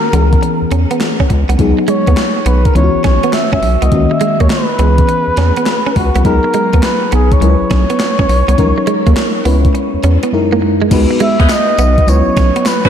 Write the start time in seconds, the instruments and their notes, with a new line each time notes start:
Already playing: fm electric piano D#3 A#3 C#4 F#4, muted trumpet A#4
0.13 analog synth bass C#2, fm electric piano E3 B3 C#4 G#4, clean electric guitar B3, closed hi-hat
0.33 kick, closed hi-hat
0.42 muted clean electric guitar stroke, closed hi-hat
0.62 analog synth bass E2
0.71 analog synth bass E2, clean electric guitar C#4, closed hi-hat
0.91 clean electric guitar B3, closed hi-hat
1.00 snare, clap, closed hi-hat
1.20 clean electric guitar C#4, kick
1.30 analog synth bass C#2, muted clean electric guitar stroke, kick, closed hi-hat
1.49 analog synth bass C2, clean electric guitar B3, closed hi-hat
1.58 analog synth bass C#2, fm electric piano F#3 B3 D#4 G#4, kick, closed hi-hat
1.79 muted clean electric guitar stroke
1.88 clean electric guitar G#3, muted trumpet C#5, closed hi-hat
2.07 analog synth bass D#2, clean electric guitar B3, kick, closed hi-hat
2.17 snare, clap, closed hi-hat
2.46 analog synth bass B1, clean electric guitar B3, muted trumpet B4, closed hi-hat
2.65 muted trumpet A#4, kick, closed hi-hat
2.75 analog synth bass C#2, fm electric piano E3 B3 C#4 E4, muted trumpet C#5, muted clean electric guitar stroke, closed hi-hat
2.84 fm electric piano F#4
2.95 analog synth bass B1
3.04 analog synth bass B1, clean electric guitar C#4, muted trumpet C#5, kick, snare, closed hi-hat
3.23 clean electric guitar B3, closed hi-hat
3.33 muted trumpet E5, snare, clap, closed hi-hat
3.53 analog synth bass C#2, clean electric guitar C#4, muted trumpet E5, kick
3.63 analog synth bass B1, muted clean electric guitar stroke, open hi-hat
3.82 analog synth bass C2, clean electric guitar B3, muted trumpet D#5, closed hi-hat
3.92 analog synth bass C#2, fm electric piano D#3 A#3 C#4 F#4, kick, closed hi-hat
4.11 muted trumpet E5, muted clean electric guitar stroke
4.21 clean electric guitar G#3, closed hi-hat
4.40 analog synth bass D#2, clean electric guitar A#3, muted trumpet C#5, kick, closed hi-hat
4.50 muted trumpet B4, snare, clap, closed hi-hat
4.79 analog synth bass C#2, fm electric piano E3 B3 C#4 G#4, clean electric guitar B3, closed hi-hat
4.98 kick, closed hi-hat
5.09 muted clean electric guitar stroke, closed hi-hat
5.28 analog synth bass E2
5.37 analog synth bass E2, clean electric guitar C#4, snare, closed hi-hat
5.56 clean electric guitar B3, closed hi-hat
5.66 snare, clap, closed hi-hat
5.86 clean electric guitar C#4
5.96 analog synth bass C#2, muted trumpet F#4, muted clean electric guitar stroke, kick, open hi-hat
6.15 analog synth bass C2, clean electric guitar B3, closed hi-hat
6.24 analog synth bass C#2, fm electric piano F#3 B3 D#4 G#4, muted trumpet A#4, kick, closed hi-hat
6.44 muted clean electric guitar stroke
6.54 clean electric guitar G#3, closed hi-hat
6.73 analog synth bass D#2, clean electric guitar B3, kick, closed hi-hat
6.83 muted trumpet B4, snare, clap, closed hi-hat
7.12 analog synth bass B1, clean electric guitar B3, muted trumpet G#4, closed hi-hat
7.32 muted trumpet C#5, kick, closed hi-hat
7.41 analog synth bass C#2, fm electric piano F#3 C#4 E4 A#4, muted clean electric guitar stroke, closed hi-hat
7.49 fm electric piano B4
7.61 analog synth bass B1
7.71 analog synth bass B1, clean electric guitar C#4, kick, snare, closed hi-hat
7.90 clean electric guitar B3, closed hi-hat
8.00 snare, clap, closed hi-hat
8.19 analog synth bass C#2, clean electric guitar C#4, kick
8.29 analog synth bass B1, muted clean electric guitar stroke, open hi-hat
8.48 analog synth bass C2, clean electric guitar B3, closed hi-hat
8.58 analog synth bass C#2, fm electric piano E3 C#4 D#4 A#4, kick, closed hi-hat
8.64 fm electric piano F#3
8.78 muted clean electric guitar stroke
8.87 clean electric guitar G#3, closed hi-hat
9.07 analog synth bass D#2, clean electric guitar A#3, kick, closed hi-hat
9.17 snare, clap, closed hi-hat
9.45 analog synth bass C#2, fm electric piano G#3 C#4 E4 B4, clean electric guitar B3, open hi-hat
9.65 kick, closed hi-hat
9.75 muted clean electric guitar stroke, closed hi-hat
9.94 analog synth bass E2
10.03 analog synth bass E2, clean electric guitar C#4, closed hi-hat
10.23 clean electric guitar B3, closed hi-hat
10.33 fm electric piano F#2 G#3 D#4 E4 A#4
10.53 clean electric guitar A#3
10.62 muted clean electric guitar stroke
10.82 clean electric guitar G#3
10.90 analog synth bass C#2, fm electric piano G#3 B3 D#4 F#4 B4, kick, closed hi-hat, crash, tambourine
11.11 muted clean electric guitar stroke
11.20 clean electric guitar G#3, muted trumpet E5, closed hi-hat
11.39 analog synth bass D#2, clean electric guitar B3, horn section D#4 G#4 B4, kick, closed hi-hat
11.49 muted trumpet D#5, snare, clap, closed hi-hat, tambourine
11.78 analog synth bass B1, clean electric guitar B3, closed hi-hat, tambourine
11.98 kick, closed hi-hat
12.07 analog synth bass C#2, fm electric piano F#3 B3 C#4 E4 B4, muted trumpet C#5, muted clean electric guitar stroke, closed hi-hat, tambourine
12.27 analog synth bass B1
12.37 analog synth bass B1, clean electric guitar C#4, kick, snare, closed hi-hat, tambourine
12.56 clean electric guitar B3, closed hi-hat
12.66 muted trumpet B4, snare, clap, closed hi-hat, tambourine
12.85 analog synth bass C#2, clean electric guitar C#4, horn section E4 F#4 B4, kick